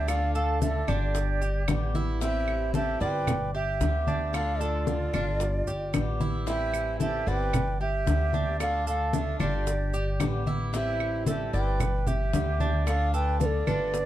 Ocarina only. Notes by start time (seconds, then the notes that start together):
0.08 F5
0.35 F5
0.62 E5
0.89 D5
2.23 E5
2.76 E5
3.02 G5
3.55 E5
4.35 F5
4.61 D5
6.48 E5
7.01 E5
7.28 G5
7.82 E5
8.61 F5
8.88 F5
9.14 E5
9.41 D5
10.75 E5
11.28 E5
11.54 G5
12.08 E5
12.88 F5
13.14 G5
13.41 B4
13.46 A4
13.67 B4